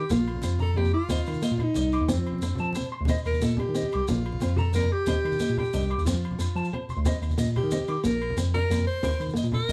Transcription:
0.10 tine electric piano A#1, steel-string acoustic guitar A#3, alto saxophone F4, high conga, low conga, maracas
0.26 low conga, low agogo
0.35 low conga
0.42 tine electric piano F2, steel-string acoustic guitar C4, high conga, low agogo, maracas
0.59 alto saxophone A4, clean electric guitar A#5, low conga, maracas
0.74 steel-string acoustic guitar A#3, alto saxophone G4, clean electric guitar D5, high conga, low conga, low agogo
0.78 tine electric piano F2
0.84 low conga, maracas
0.93 alto saxophone F4, clean electric guitar D6
1.09 tine electric piano D#2, steel-string acoustic guitar C4, clean electric guitar D#5, high conga, low conga, low agogo, maracas
1.18 maracas
1.26 tine electric piano D#3, low agogo, maracas
1.34 low conga, maracas
1.42 steel-string acoustic guitar A#3, clean electric guitar D#5, maracas
1.50 tine electric piano A#2, low conga, maracas
1.58 low conga, low agogo
1.63 alto saxophone D#4
1.74 tine electric piano C2, steel-string acoustic guitar D5, clean electric guitar D#5, high conga, low conga, maracas
1.83 low conga
1.92 clean electric guitar D6, low agogo, maracas
2.02 tine electric piano D#2
2.08 tine electric piano F2, steel-string acoustic guitar C4, high conga, low conga, maracas
2.13 alto saxophone C4
2.18 tine electric piano F3
2.24 low conga, low agogo
2.32 low conga
2.38 tine electric piano F2, high conga, maracas
2.43 steel-string acoustic guitar D4, low agogo
2.55 low conga, maracas
2.60 tine electric piano F3, clean electric guitar A5
2.73 steel-string acoustic guitar C4, clean electric guitar C5, high conga, low conga, low agogo, maracas
2.81 low conga, maracas
2.92 clean electric guitar C6
3.01 tine electric piano D2
3.05 tine electric piano D#2, high conga, low conga, maracas
3.09 steel-string acoustic guitar C4, clean electric guitar D#5, low agogo
3.17 maracas
3.25 tine electric piano D#2, alto saxophone A#4, low agogo, maracas
3.31 low conga, maracas
3.40 tine electric piano A#2, steel-string acoustic guitar A#3, alto saxophone A4, clean electric guitar D#5, high conga, maracas
3.50 maracas
3.57 alto saxophone G4, low conga, low agogo
3.69 tine electric piano D#3
3.74 steel-string acoustic guitar C4, clean electric guitar D#5, low conga, maracas
3.83 low conga
3.92 tine electric piano C2, clean electric guitar D6, low agogo, maracas
4.08 tine electric piano A#1, steel-string acoustic guitar A#3, alto saxophone F4, high conga, low conga, maracas
4.26 low agogo
4.32 low conga
4.40 tine electric piano F2, steel-string acoustic guitar C4, high conga, low agogo, maracas
4.56 alto saxophone A4, clean electric guitar A#5, low conga, maracas
4.73 tine electric piano F2, steel-string acoustic guitar A#3, alto saxophone A#4, clean electric guitar D5, high conga, low conga, low agogo, maracas
4.82 low conga, maracas
4.92 alto saxophone G4, clean electric guitar D6
5.06 tine electric piano D#2, steel-string acoustic guitar C4, clean electric guitar D#5, high conga, low conga, low agogo, maracas
5.16 low conga
5.25 tine electric piano D#3, low agogo
5.32 low conga, maracas
5.39 steel-string acoustic guitar A#3, clean electric guitar D#5, high conga, maracas
5.48 tine electric piano A#2, maracas
5.57 alto saxophone G4, low conga, low agogo
5.64 low conga, maracas
5.73 tine electric piano C2, steel-string acoustic guitar D4, clean electric guitar D#5, high conga, low conga, maracas
5.82 low conga, maracas
5.90 clean electric guitar D6, low agogo
5.99 tine electric piano D#2, maracas
6.05 tine electric piano F2, steel-string acoustic guitar C4, alto saxophone F4, high conga, low conga, maracas
6.14 tine electric piano F3, low conga, maracas
6.23 low conga, low agogo
6.31 low conga
6.39 tine electric piano F2, steel-string acoustic guitar D4, high conga, low agogo, maracas
6.56 tine electric piano F3, clean electric guitar A5, high conga, maracas
6.64 maracas
6.73 steel-string acoustic guitar C4, clean electric guitar C5, low conga, low agogo
6.89 clean electric guitar C6, low conga, maracas
6.97 tine electric piano D2
7.04 tine electric piano D#2, steel-string acoustic guitar C4, clean electric guitar D#5, high conga, low conga, low agogo, maracas
7.14 maracas
7.21 tine electric piano D#2, low agogo, maracas
7.31 low conga, maracas
7.38 tine electric piano A#2, steel-string acoustic guitar A#3, clean electric guitar D#5, high conga, maracas
7.47 low conga, maracas
7.56 alto saxophone G4, low conga, low agogo
7.63 tine electric piano D#3
7.71 steel-string acoustic guitar C4, clean electric guitar D#5, high conga, low conga, maracas
7.81 low conga
7.88 tine electric piano D#3, clean electric guitar D6, low agogo, maracas
8.04 tine electric piano A#1, steel-string acoustic guitar A#3, alto saxophone A#4, high conga, low conga, maracas
8.22 low agogo
8.30 low conga
8.37 tine electric piano F2, steel-string acoustic guitar C4, high conga, low agogo, maracas
8.54 alto saxophone A#4, clean electric guitar A#5, low conga, maracas
8.70 tine electric piano F2, steel-string acoustic guitar A#3, clean electric guitar D5, high conga, low conga, low agogo, maracas
8.77 low conga, maracas
8.87 alto saxophone C5
9.03 tine electric piano D#2, steel-string acoustic guitar C4, clean electric guitar A#4, high conga, low conga, low agogo, maracas
9.12 maracas
9.20 tine electric piano D#3, low agogo, maracas
9.27 low conga, maracas
9.34 steel-string acoustic guitar A#3, clean electric guitar D#5, high conga, maracas
9.44 tine electric piano A#2, low conga, maracas
9.52 alto saxophone A#4, low conga, low agogo
9.69 tine electric piano C2, steel-string acoustic guitar D4, clean electric guitar D#5, high conga, low conga, maracas

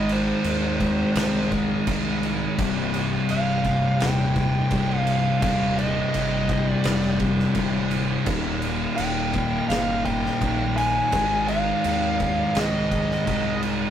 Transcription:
Already playing: fingered electric bass G#1, distorted electric guitar G#2 D#3 G#3, tonewheel organ G#3 D#4 A#4, lead electric guitar D#5
0.09 lead electric guitar C5, crash
0.44 fingered electric bass D#2, crash
0.80 distorted electric guitar G#2 D#3 G#3, kick, crash
1.15 fingered electric bass C2, snare, crash
1.52 kick, crash
1.87 fingered electric bass C2, distorted electric guitar G#2 D#3 G#3, kick, crash
2.23 crash
2.58 fingered electric bass C1, distorted electric guitar C2 G2 C3, tonewheel organ C4 G4 D#5, kick, crash
2.94 crash
3.29 fingered electric bass C1, lead electric guitar F5, crash
3.64 distorted electric guitar G2 C3, kick, crash
3.69 distorted electric guitar C2
4.00 fingered electric bass D#1, lead electric guitar G5, snare, crash
4.36 kick, crash
4.71 fingered electric bass C1, distorted electric guitar C2 G2, kick, crash
4.76 distorted electric guitar C3
5.00 lead electric guitar F5
5.07 crash
5.42 fingered electric bass D#1, distorted electric guitar C2 G2, lead electric guitar F5, kick, crash
5.46 distorted electric guitar C3
5.79 lead electric guitar D#5, crash
6.14 fingered electric bass G1, crash
6.49 distorted electric guitar C2 G2 C3, kick, crash
6.69 lead electric guitar D5
6.84 fingered electric bass F1, snare, crash
7.20 kick, crash
7.39 snare
7.55 fingered electric bass D1, distorted electric guitar C2 G2 C3, kick, crash
7.91 crash
8.25 fingered electric bass D#1, distorted electric guitar D#2 A#2, tonewheel organ D#4 A#4 F5, kick, crash
8.29 distorted electric guitar D#3
8.62 crash
8.96 fingered electric bass D#1, lead electric guitar G5, crash
9.33 distorted electric guitar D#2 A#2 D#3, kick, crash
9.69 fingered electric bass G1, lead electric guitar F5, snare, crash
10.05 lead electric guitar G5, kick, crash
10.26 snare
10.41 fingered electric bass A#1, distorted electric guitar D#2 A#2 D#3, kick, crash
10.77 lead electric guitar G#5, crash
11.10 fingered electric bass G#1, distorted electric guitar G#2 D#3, tonewheel organ G#3 D#4, kick, crash
11.15 distorted electric guitar G#3
11.48 lead electric guitar F5, crash
11.84 fingered electric bass D#2, crash
12.18 distorted electric guitar G#2 D#3 G#3, kick, crash
12.55 fingered electric bass C2, snare, crash
12.60 lead electric guitar D#5
12.91 kick, crash
13.11 snare
13.26 fingered electric bass C2, distorted electric guitar G#2 D#3 G#3, kick, crash
13.63 crash

